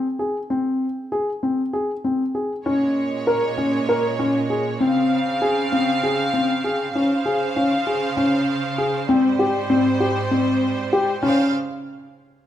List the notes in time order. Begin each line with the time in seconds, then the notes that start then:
0.19 G#4
0.50 C4
1.12 G#4
1.43 C4
1.73 G#4
2.04 C4
2.35 G#4
2.65 A#2 G#3 C#4 C#5
3.27 A#4
3.58 C#4
3.89 A#4
4.19 C#4
4.50 G#4
4.80 C#3 C4 F5
5.42 G#4
5.72 C4
6.03 G#4
6.34 C4
6.64 G#4
6.94 C#3 C#4 C5 F5
7.26 G#4
7.56 C#4
7.87 G#4
8.17 C#4
8.78 G#4
9.09 G#2 G3 C4 C5
9.39 G4
9.70 C4
10.00 G4
10.31 C4
10.93 G4
11.23 C#3 C#4 C5 F5